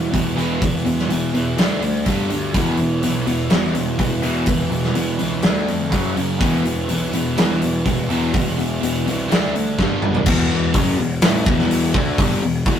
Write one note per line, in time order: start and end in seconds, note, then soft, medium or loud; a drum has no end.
0.00 0.12 E1 medium
0.00 0.11 E2 medium
0.00 0.12 E2 medium
0.00 0.11 B2 medium
0.00 0.13 B2 loud
0.00 0.13 E3 loud
0.12 0.35 E1 medium
0.12 0.34 E2 medium
0.12 0.35 B2 medium
0.12 0.39 E3 medium
0.12 kick medium
0.12 open hi-hat medium
0.36 0.60 E1 medium
0.36 0.59 E2 medium
0.36 0.59 B2 medium
0.36 0.60 E3 medium
0.36 open hi-hat soft
0.60 0.84 E1 medium
0.60 0.83 E2 medium
0.60 0.83 B2 medium
0.60 1.11 E3 loud
0.60 kick loud
0.60 open hi-hat medium
0.85 1.08 E1 medium
0.85 1.07 E2 medium
0.85 1.07 B2 medium
0.85 open hi-hat soft
0.99 snare soft
1.09 1.33 E1 medium
1.09 1.32 E2 medium
1.09 1.32 B2 medium
1.09 1.34 E3 medium
1.09 open hi-hat medium
1.34 1.56 E2 medium
1.34 1.56 B2 medium
1.34 1.58 E3 medium
1.34 open hi-hat soft
1.57 1.81 D2 medium
1.57 1.81 D3 medium
1.57 1.81 A3 medium
1.57 1.82 D4 loud
1.57 snare loud
1.57 open hi-hat medium
1.81 2.08 D2 medium
1.81 2.04 D3 medium
1.81 2.04 A3 medium
1.81 open hi-hat medium
2.06 2.30 G1 medium
2.06 2.29 G2 medium
2.06 2.29 D3 medium
2.06 2.30 G3 loud
2.06 kick medium
2.06 open hi-hat medium
2.30 2.54 D2 medium
2.30 2.52 G2 medium
2.30 2.53 D3 medium
2.30 2.55 G3 loud
2.30 open hi-hat medium
2.54 2.78 E1 medium
2.54 2.78 E2 medium
2.54 2.78 B2 medium
2.54 2.78 E3 medium
2.54 kick loud
2.54 open hi-hat medium
2.77 3.03 E1 medium
2.77 3.01 E2 medium
2.77 3.01 B2 medium
2.77 open hi-hat soft
3.03 3.26 B1 medium
3.03 3.25 E2 medium
3.03 3.26 B2 medium
3.03 3.26 E3 medium
3.03 open hi-hat medium
3.27 3.51 E1 medium
3.27 3.49 E2 medium
3.27 3.49 B2 medium
3.27 3.51 E3 medium
3.27 open hi-hat medium
3.50 3.75 E1 medium
3.50 3.73 E2 medium
3.50 3.73 B2 medium
3.50 3.75 E3 loud
3.50 snare loud
3.50 open hi-hat medium
3.74 3.98 E1 medium
3.74 3.97 E2 medium
3.74 3.97 B2 medium
3.74 open hi-hat medium
3.99 4.23 E1 medium
3.99 4.20 E2 medium
3.99 4.21 B2 medium
3.99 4.23 E3 medium
3.99 kick medium
3.99 open hi-hat medium
4.21 4.46 E1 medium
4.21 4.44 E2 medium
4.21 4.45 B2 medium
4.21 4.46 E3 medium
4.21 open hi-hat soft
4.46 4.71 E1 medium
4.46 4.69 E2 medium
4.46 4.69 B2 medium
4.46 4.96 E3 loud
4.46 kick loud
4.46 open hi-hat medium
4.70 4.96 E1 medium
4.70 4.93 E2 medium
4.70 4.93 B2 medium
4.70 open hi-hat soft
4.84 snare soft
4.95 5.19 E1 medium
4.95 5.17 E2 medium
4.95 5.18 B2 medium
4.95 5.20 E3 medium
4.95 open hi-hat medium
5.19 5.43 C#2 medium
5.19 5.41 E2 medium
5.19 5.42 B2 medium
5.19 5.43 E3 medium
5.19 open hi-hat soft
5.42 5.67 D2 loud
5.42 5.67 D3 medium
5.42 5.67 A3 loud
5.42 5.68 D4 loud
5.42 snare medium
5.42 open hi-hat medium
5.68 5.92 F2 medium
5.68 5.90 D3 medium
5.68 5.91 A3 medium
5.68 open hi-hat soft
5.92 6.16 F#1 medium
5.92 6.15 F#2 loud
5.92 6.16 C#3 loud
5.92 6.16 F#3 loud
5.92 kick medium
5.92 open hi-hat medium
6.16 6.40 F#1 medium
6.16 6.39 F#2 medium
6.16 6.39 C#3 medium
6.16 6.40 F#3 medium
6.16 open hi-hat soft
6.40 6.64 E1 loud
6.40 6.64 E2 medium
6.40 6.64 B2 loud
6.40 6.64 E3 medium
6.40 kick loud
6.40 open hi-hat medium
6.65 6.88 E1 medium
6.65 6.87 E2 medium
6.65 6.87 B2 medium
6.65 open hi-hat medium
6.89 7.13 B1 medium
6.89 7.12 E2 medium
6.89 7.12 B2 medium
6.89 7.13 E3 medium
6.89 open hi-hat medium
7.13 7.37 E1 medium
7.13 7.36 E2 medium
7.13 7.36 B2 medium
7.13 7.38 E3 medium
7.13 open hi-hat medium
7.37 7.61 E1 medium
7.37 7.60 E2 medium
7.37 7.61 B2 medium
7.37 7.61 E3 loud
7.37 snare medium
7.37 open hi-hat medium
7.62 7.85 E1 medium
7.62 7.84 E2 medium
7.62 7.84 B2 medium
7.62 open hi-hat medium
7.86 8.09 E1 medium
7.86 8.08 E2 medium
7.86 8.08 B2 medium
7.86 8.11 E3 loud
7.86 kick medium
7.86 open hi-hat medium
8.09 8.33 E1 loud
8.09 8.33 E2 medium
8.09 8.34 B2 medium
8.09 8.34 E3 medium
8.09 open hi-hat soft
8.34 8.56 E1 loud
8.34 8.56 E2 medium
8.34 8.56 B2 medium
8.34 8.83 E3 medium
8.34 kick loud
8.34 open hi-hat medium
8.57 8.81 E1 medium
8.57 8.80 E2 medium
8.57 8.80 B2 medium
8.57 open hi-hat soft
8.81 9.05 E1 medium
8.81 9.04 E2 medium
8.81 9.04 B2 medium
8.81 9.08 E3 loud
8.81 open hi-hat medium
9.05 9.28 C2 medium
9.05 9.28 E2 medium
9.05 9.28 B2 medium
9.05 9.30 E3 medium
9.05 open hi-hat soft
9.29 9.53 D2 medium
9.29 9.53 D3 loud
9.29 9.53 A3 loud
9.29 9.54 D4 loud
9.29 snare loud
9.29 open hi-hat medium
9.54 9.77 D2 medium
9.54 9.77 D3 medium
9.54 9.77 A3 medium
9.54 open hi-hat medium
9.79 10.02 G1 medium
9.79 10.02 G2 loud
9.79 10.02 D3 loud
9.79 10.02 G3 loud
9.79 kick medium
9.79 snare medium
10.02 10.26 G1 loud
10.02 10.25 G2 medium
10.02 10.25 D3 medium
10.02 mid tom medium
10.07 10.27 G3 medium
10.15 floor tom medium
10.26 10.71 E1 medium
10.26 10.74 E2 loud
10.26 10.74 B2 loud
10.26 10.75 E3 loud
10.26 kick loud
10.26 crash loud
10.74 10.97 F#1 medium
10.74 10.98 F#2 medium
10.74 10.98 C#3 loud
10.74 10.99 F#3 loud
10.74 kick loud
10.74 open hi-hat medium
10.98 11.21 E1 medium
10.98 11.18 E2 medium
10.98 11.18 B2 medium
11.21 11.45 A1 loud
11.21 11.46 A2 medium
11.21 11.46 E3 loud
11.21 11.46 A3 loud
11.21 snare loud
11.21 open hi-hat medium
11.46 11.91 E1 medium
11.46 11.93 E2 loud
11.46 11.94 B2 loud
11.46 11.94 E3 loud
11.46 kick loud
11.59 snare soft
11.71 open hi-hat medium
11.94 12.17 D2 loud
11.94 12.18 D3 medium
11.94 12.18 A3 loud
11.94 12.19 D4 medium
11.94 kick loud
12.18 12.40 G1 loud
12.18 12.41 G2 medium
12.18 12.42 D3 loud
12.18 12.42 G3 loud
12.18 kick loud
12.18 open hi-hat medium
12.42 12.65 E1 medium
12.42 12.61 E2 medium
12.42 12.62 B2 medium
12.66 12.79 E1 medium
12.66 12.79 E2 medium
12.66 12.79 B2 loud
12.66 12.79 E3 loud
12.66 kick loud
12.66 open hi-hat medium